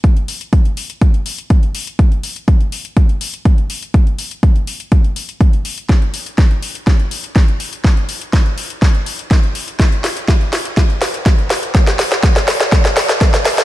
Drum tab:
HH |xxoxxxoxxxoxxxox|xxoxxxoxxxoxxxox|xxoxxxoxxxoxxxox|xxoxxxoxxxoxxxox|
SD |----------------|----------------|----------------|o---o---o---o---|
BD |o---o---o---o---|o---o---o---o---|o---o---o---o---|o---o---o---o---|

HH |xxoxxxoxxxoxxxox|xxoxxxoxxxoxxxox|xxoxxxoxxxoxxxox|
SD |o---o---o---o---|o-o-o-o-o-o-o-o-|oooooooooooooooo|
BD |o---o---o---o---|o---o---o---o---|o---o---o---o---|